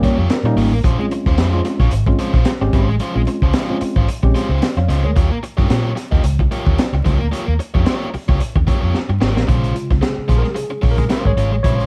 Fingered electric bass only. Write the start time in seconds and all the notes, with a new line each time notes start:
0.18 F2
0.43 A#2
0.56 G#1
0.71 A1
0.84 A#1
1.26 D#2
1.38 F2
1.79 A#1
1.92 G#1
2.34 A#1
2.61 G#1
2.73 G#1
2.88 A1
3.15 A#1
3.42 C#2
3.81 muted fingered electric bass stroke
3.96 G#1
4.23 A#1
4.49 C#2
4.77 F2
4.89 C#2
5.03 D2
5.17 D#2
5.59 G2
5.70 A#2
6.13 D#2
6.24 C#2
6.67 D#2
6.93 C#2
7.05 C#2
7.20 D2
7.48 D#2
7.75 F2
8.14 muted fingered electric bass stroke
8.29 C#2
8.55 D#2
8.83 F2
9.09 G2
9.21 G#1
9.37 A1
9.49 A#1
9.91 C#2
10.18 muted fingered electric bass stroke
10.29 A#1
10.83 A#1
11.26 G#1
11.37 G#1
11.51 A1
11.65 A#1